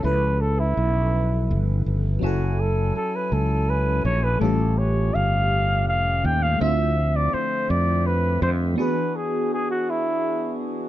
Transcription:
<<
  \new Staff \with { instrumentName = "Flugelhorn" } { \time 6/8 \key a \major \tempo 4. = 55 b'8 a'16 e'4. r8. | fis'8 a'8 a'16 b'16 a'8 b'8 cis''16 b'16 | a'8 cis''8 eis''4 eis''8 g''16 eis''16 | e''8. d''16 c''8 d''8 b'8 c''16 r16 |
b'8 gis'8 gis'16 fis'16 e'4 r8 | }
  \new Staff \with { instrumentName = "Tonewheel organ" } { \time 6/8 \key a \major r2. | <fis e' a' gis''>2. | <a cis' g'>2. | <d f c' e''>2. |
<e d' fis' gis'>2. | }
  \new Staff \with { instrumentName = "FM electric piano" } { \time 6/8 \key a \major <cis eis cis' e' a' b'>2. | <fis cis' e' a' gis''>2. | <a, g a cis' eis' g'>2. | <d a c' e' f'>2. |
<e b d' fis' gis'>2. | }
  \new Staff \with { instrumentName = "Fretless electric bass" } { \clef bass \time 6/8 \key a \major cis,4 b,,4 g,,8 g,,8 | fis,,4 r8 cis,4 bes,,8 | a,,4 g,,4 eis,,8 dis,8 | d,4 r8 f,4 f,8 |
r2. | }
>>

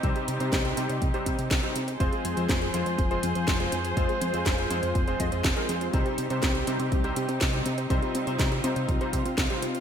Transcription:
<<
  \new Staff \with { instrumentName = "String section" } { \time 4/4 \key c \minor \tempo 4 = 122 << { g'1 | <f c''>1~ | <f c''>1 | g'1 |
f'1 | } \\ { <c' ees'>1 | <f' aes'>1~ | <f' aes'>1 | <c' ees'>1~ |
<c' ees'>1 | } >> }
  \new Staff \with { instrumentName = "Synth arpeggio sound" } { \time 4/4 \key c \minor c'16 g'16 c'16 c''16 c'16 g'16 c'16 c''16 c'16 g'16 c'16 c''16 c'16 g'16 c'16 c''16 | c'16 aes'16 c'16 c''16 c'16 aes'16 c'16 c''16 c'16 aes'16 c'16 c''16 c'16 aes'16 c'16 c''16 | c'16 aes'16 c'16 c''16 c'16 aes'16 c'16 c''16 c'16 aes'16 c'16 c''16 c'16 aes'16 c'16 c''16 | c'16 g'16 c'16 c''16 c'16 g'16 c'16 c''16 c'16 g'16 c'16 c''16 c'16 g'16 c'16 c''16 |
c'16 g'16 c'16 c''16 c'16 g'16 c'16 c''16 c'16 g'16 c'16 c''16 c'16 g'16 c'16 c''16 | }
  \new Staff \with { instrumentName = "Electric grand piano" } { \time 4/4 \key c \minor <c g c' ees' c''>8. <c g c' ees' c''>8. <c g c' ees' c''>8 r16 <c g c' ees' c''>8 r8 <c g c' ees' c''>16 r8 | <aes c' f' c''>8. <aes c' f' c''>8. <aes c' f' c''>8 r16 <aes c' f' c''>8 r8 <aes c' f' c''>16 r8 | <aes c' f' c''>8. <aes c' f' c''>8. <aes c' f' c''>8 r16 <aes c' f' c''>16 <aes c' f' ees''>8 r16 <aes c' f' bes'>16 <aes c' f' c''>8 | <c g c' ees' c''>8. <c g c' ees' c''>8. <c g c' ees' c''>8 r16 <c g c' ees' c''>8 r8 <c g c' ees' c''>16 r8 |
<c g c' ees' c''>8. <c g c' ees' c''>8. <c g c' ees' c''>8 r16 <c g c' ees' c''>8 r8 <c g c' ees' c''>16 r8 | }
  \new Staff \with { instrumentName = "Analog synth bass" } { \clef bass \time 4/4 \key c \minor c,16 r16 c16 c16 c,8 c16 c16 c,16 r16 c16 c16 c,16 r16 c8 | f,,16 r16 f,16 f,16 f,,8 f,16 f,16 f,,8 f,16 f,16 f,,8 f,8 | f,,16 r16 f,16 f,16 f,,8 f,16 f,16 f,,8 f,16 f,16 f,,16 r16 f,8 | c,16 r16 c16 c16 c,8 c16 c16 c,8 c16 c16 c,8 c8 |
c,16 r16 c16 c16 c,8 c16 c16 c,16 r16 c16 c16 c,16 r16 c8 | }
  \new DrumStaff \with { instrumentName = "Drums" } \drummode { \time 4/4 <hh bd>16 hh16 hh16 hh16 <hh bd sn>16 hh16 hh16 hh16 <hh bd>16 hh16 <hh bd>16 hh16 <hh bd sn>16 hh16 hh16 hh16 | <hh bd>16 hh16 hh16 hh16 <hh bd sn>16 hh16 hh16 hh16 <hh bd>16 hh16 hh16 hh16 <hh bd sn>16 hh16 hh16 hh16 | <hh bd>16 hh16 hh16 hh16 <hh bd sn>16 hh16 hh16 hh16 <hh bd>16 hh16 <hh bd>16 hh16 <hh bd sn>16 hh16 hh16 hh16 | <hh bd>16 hh16 hh16 hh16 <hh bd sn>16 hh16 hh16 hh16 <hh bd>16 hh16 hh16 hh16 <hh bd sn>16 hh16 hh16 hh16 |
<hh bd>16 hh16 hh16 hh16 <hh bd sn>16 hh16 hh16 hh16 <hh bd>16 hh16 <hh bd>16 hh16 <hh bd sn>16 hh16 hh16 hh16 | }
>>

